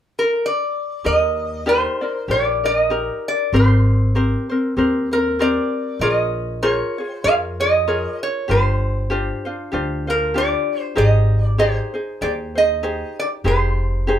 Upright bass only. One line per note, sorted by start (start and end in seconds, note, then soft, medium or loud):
1.06 1.86 D#2 medium
2.28 3.09 A#1 medium
3.53 4.33 G#1 medium
4.77 5.57 D#2 medium
6.00 6.80 A#1 medium
7.24 8.05 F2 medium
8.49 9.30 G1 medium
9.73 10.54 D2 medium
10.97 11.78 G#1 medium
12.21 13.02 D#2 medium
13.44 14.19 F1 medium